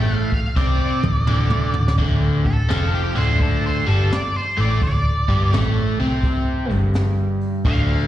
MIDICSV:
0, 0, Header, 1, 7, 480
1, 0, Start_track
1, 0, Key_signature, -1, "minor"
1, 0, Tempo, 709220
1, 1342, Time_signature, 4, 2, 24, 8
1, 5463, End_track
2, 0, Start_track
2, 0, Title_t, "Lead electric guitar"
2, 0, Program_c, 0, 29
2, 0, Note_on_c, 0, 79, 95
2, 105, Note_off_c, 0, 79, 0
2, 105, Note_on_c, 0, 77, 95
2, 213, Note_off_c, 0, 77, 0
2, 230, Note_on_c, 0, 77, 72
2, 380, Note_off_c, 0, 77, 0
2, 383, Note_on_c, 0, 74, 78
2, 538, Note_off_c, 0, 74, 0
2, 545, Note_on_c, 0, 74, 81
2, 1319, Note_off_c, 0, 74, 0
2, 1665, Note_on_c, 0, 69, 80
2, 1974, Note_off_c, 0, 69, 0
2, 1992, Note_on_c, 0, 67, 70
2, 2142, Note_off_c, 0, 67, 0
2, 2150, Note_on_c, 0, 72, 66
2, 2301, Note_off_c, 0, 72, 0
2, 2314, Note_on_c, 0, 69, 74
2, 2463, Note_off_c, 0, 69, 0
2, 2477, Note_on_c, 0, 72, 72
2, 2625, Note_off_c, 0, 72, 0
2, 2630, Note_on_c, 0, 69, 75
2, 2781, Note_off_c, 0, 69, 0
2, 2792, Note_on_c, 0, 74, 73
2, 2942, Note_off_c, 0, 74, 0
2, 2952, Note_on_c, 0, 72, 67
2, 3102, Note_off_c, 0, 72, 0
2, 3116, Note_on_c, 0, 74, 70
2, 3262, Note_off_c, 0, 74, 0
2, 3270, Note_on_c, 0, 74, 81
2, 3732, Note_off_c, 0, 74, 0
2, 5191, Note_on_c, 0, 77, 82
2, 5463, Note_off_c, 0, 77, 0
2, 5463, End_track
3, 0, Start_track
3, 0, Title_t, "Overdriven electric guitar"
3, 0, Program_c, 1, 29
3, 0, Note_on_c, 1, 45, 81
3, 0, Note_on_c, 1, 57, 92
3, 210, Note_off_c, 1, 45, 0
3, 211, Note_off_c, 1, 57, 0
3, 382, Note_on_c, 1, 48, 85
3, 384, Note_on_c, 1, 60, 104
3, 689, Note_off_c, 1, 48, 0
3, 690, Note_off_c, 1, 60, 0
3, 697, Note_on_c, 1, 38, 70
3, 829, Note_off_c, 1, 38, 0
3, 863, Note_on_c, 1, 38, 74
3, 871, Note_on_c, 1, 50, 90
3, 1169, Note_off_c, 1, 38, 0
3, 1173, Note_off_c, 1, 50, 0
3, 1180, Note_on_c, 1, 38, 69
3, 1310, Note_off_c, 1, 38, 0
3, 1340, Note_on_c, 1, 38, 82
3, 1345, Note_on_c, 1, 50, 83
3, 1648, Note_off_c, 1, 38, 0
3, 1650, Note_off_c, 1, 50, 0
3, 1661, Note_on_c, 1, 38, 61
3, 1791, Note_off_c, 1, 38, 0
3, 1819, Note_on_c, 1, 41, 83
3, 1821, Note_on_c, 1, 53, 81
3, 2127, Note_off_c, 1, 41, 0
3, 2128, Note_off_c, 1, 53, 0
3, 2133, Note_on_c, 1, 38, 74
3, 2136, Note_on_c, 1, 50, 83
3, 2606, Note_off_c, 1, 38, 0
3, 2608, Note_off_c, 1, 50, 0
3, 2613, Note_on_c, 1, 43, 85
3, 2618, Note_on_c, 1, 55, 86
3, 2774, Note_off_c, 1, 43, 0
3, 2777, Note_off_c, 1, 55, 0
3, 3093, Note_on_c, 1, 45, 82
3, 3097, Note_on_c, 1, 57, 95
3, 3254, Note_off_c, 1, 45, 0
3, 3256, Note_off_c, 1, 57, 0
3, 3261, Note_on_c, 1, 38, 64
3, 3514, Note_off_c, 1, 38, 0
3, 3577, Note_on_c, 1, 43, 80
3, 3580, Note_on_c, 1, 55, 99
3, 3736, Note_off_c, 1, 43, 0
3, 3738, Note_off_c, 1, 55, 0
3, 3742, Note_on_c, 1, 45, 85
3, 3745, Note_on_c, 1, 57, 92
3, 4048, Note_off_c, 1, 45, 0
3, 4050, Note_off_c, 1, 57, 0
3, 4058, Note_on_c, 1, 48, 77
3, 4061, Note_on_c, 1, 60, 88
3, 4540, Note_off_c, 1, 48, 0
3, 4540, Note_on_c, 1, 43, 89
3, 4543, Note_off_c, 1, 60, 0
3, 4543, Note_on_c, 1, 55, 95
3, 5175, Note_off_c, 1, 43, 0
3, 5178, Note_off_c, 1, 55, 0
3, 5178, Note_on_c, 1, 38, 85
3, 5183, Note_on_c, 1, 50, 92
3, 5463, Note_off_c, 1, 38, 0
3, 5463, Note_off_c, 1, 50, 0
3, 5463, End_track
4, 0, Start_track
4, 0, Title_t, "Picked electric bass"
4, 0, Program_c, 2, 34
4, 0, Note_on_c, 2, 33, 76
4, 197, Note_off_c, 2, 33, 0
4, 382, Note_on_c, 2, 36, 84
4, 676, Note_off_c, 2, 36, 0
4, 700, Note_on_c, 2, 26, 67
4, 852, Note_off_c, 2, 26, 0
4, 866, Note_on_c, 2, 26, 77
4, 1158, Note_off_c, 2, 26, 0
4, 1179, Note_on_c, 2, 26, 69
4, 1331, Note_off_c, 2, 26, 0
4, 1657, Note_on_c, 2, 26, 68
4, 1810, Note_off_c, 2, 26, 0
4, 1826, Note_on_c, 2, 29, 76
4, 2118, Note_off_c, 2, 29, 0
4, 2144, Note_on_c, 2, 26, 88
4, 2594, Note_off_c, 2, 26, 0
4, 2623, Note_on_c, 2, 31, 80
4, 2773, Note_off_c, 2, 31, 0
4, 3102, Note_on_c, 2, 33, 81
4, 3252, Note_off_c, 2, 33, 0
4, 3259, Note_on_c, 2, 26, 74
4, 3554, Note_off_c, 2, 26, 0
4, 3575, Note_on_c, 2, 31, 79
4, 3729, Note_off_c, 2, 31, 0
4, 3744, Note_on_c, 2, 33, 87
4, 4037, Note_off_c, 2, 33, 0
4, 4061, Note_on_c, 2, 36, 78
4, 4512, Note_off_c, 2, 36, 0
4, 4541, Note_on_c, 2, 31, 81
4, 5156, Note_off_c, 2, 31, 0
4, 5176, Note_on_c, 2, 26, 89
4, 5463, Note_off_c, 2, 26, 0
4, 5463, End_track
5, 0, Start_track
5, 0, Title_t, "Muted overdriven electric guitar strokes"
5, 220, Note_on_c, 9, 29, 43
5, 288, Note_off_c, 9, 29, 0
5, 2787, Note_on_c, 9, 29, 52
5, 2854, Note_off_c, 9, 29, 0
5, 5463, End_track
6, 0, Start_track
6, 0, Title_t, "Muted picked electric bass strokes"
6, 218, Note_on_c, 9, 29, 35
6, 286, Note_off_c, 9, 29, 0
6, 2788, Note_on_c, 9, 29, 39
6, 2856, Note_off_c, 9, 29, 0
6, 5463, End_track
7, 0, Start_track
7, 0, Title_t, "Drums"
7, 218, Note_on_c, 9, 36, 74
7, 218, Note_on_c, 9, 46, 45
7, 285, Note_off_c, 9, 36, 0
7, 286, Note_off_c, 9, 46, 0
7, 381, Note_on_c, 9, 36, 99
7, 390, Note_on_c, 9, 38, 49
7, 449, Note_off_c, 9, 36, 0
7, 458, Note_off_c, 9, 38, 0
7, 700, Note_on_c, 9, 47, 62
7, 768, Note_off_c, 9, 47, 0
7, 861, Note_on_c, 9, 45, 68
7, 928, Note_off_c, 9, 45, 0
7, 1016, Note_on_c, 9, 45, 68
7, 1084, Note_off_c, 9, 45, 0
7, 1175, Note_on_c, 9, 43, 69
7, 1243, Note_off_c, 9, 43, 0
7, 1273, Note_on_c, 9, 38, 76
7, 1340, Note_off_c, 9, 38, 0
7, 1342, Note_on_c, 9, 36, 104
7, 1344, Note_on_c, 9, 46, 59
7, 1410, Note_off_c, 9, 36, 0
7, 1412, Note_off_c, 9, 46, 0
7, 1657, Note_on_c, 9, 36, 70
7, 1657, Note_on_c, 9, 46, 45
7, 1725, Note_off_c, 9, 36, 0
7, 1725, Note_off_c, 9, 46, 0
7, 1818, Note_on_c, 9, 46, 63
7, 1830, Note_on_c, 9, 38, 99
7, 1886, Note_off_c, 9, 46, 0
7, 1897, Note_off_c, 9, 38, 0
7, 2137, Note_on_c, 9, 46, 44
7, 2204, Note_off_c, 9, 46, 0
7, 2299, Note_on_c, 9, 46, 57
7, 2300, Note_on_c, 9, 36, 97
7, 2367, Note_off_c, 9, 36, 0
7, 2367, Note_off_c, 9, 46, 0
7, 2619, Note_on_c, 9, 46, 48
7, 2687, Note_off_c, 9, 46, 0
7, 2781, Note_on_c, 9, 46, 56
7, 2792, Note_on_c, 9, 38, 96
7, 2849, Note_off_c, 9, 46, 0
7, 2860, Note_off_c, 9, 38, 0
7, 3100, Note_on_c, 9, 46, 42
7, 3168, Note_off_c, 9, 46, 0
7, 3256, Note_on_c, 9, 46, 63
7, 3260, Note_on_c, 9, 36, 102
7, 3324, Note_off_c, 9, 46, 0
7, 3327, Note_off_c, 9, 36, 0
7, 3572, Note_on_c, 9, 46, 45
7, 3575, Note_on_c, 9, 36, 71
7, 3639, Note_off_c, 9, 46, 0
7, 3642, Note_off_c, 9, 36, 0
7, 3739, Note_on_c, 9, 46, 65
7, 3750, Note_on_c, 9, 38, 99
7, 3806, Note_off_c, 9, 46, 0
7, 3818, Note_off_c, 9, 38, 0
7, 4057, Note_on_c, 9, 46, 47
7, 4125, Note_off_c, 9, 46, 0
7, 4218, Note_on_c, 9, 36, 98
7, 4219, Note_on_c, 9, 46, 67
7, 4286, Note_off_c, 9, 36, 0
7, 4286, Note_off_c, 9, 46, 0
7, 4536, Note_on_c, 9, 46, 56
7, 4603, Note_off_c, 9, 46, 0
7, 4694, Note_on_c, 9, 46, 68
7, 4706, Note_on_c, 9, 38, 100
7, 4762, Note_off_c, 9, 46, 0
7, 4773, Note_off_c, 9, 38, 0
7, 5015, Note_on_c, 9, 46, 44
7, 5082, Note_off_c, 9, 46, 0
7, 5175, Note_on_c, 9, 46, 66
7, 5176, Note_on_c, 9, 36, 99
7, 5243, Note_off_c, 9, 46, 0
7, 5244, Note_off_c, 9, 36, 0
7, 5463, End_track
0, 0, End_of_file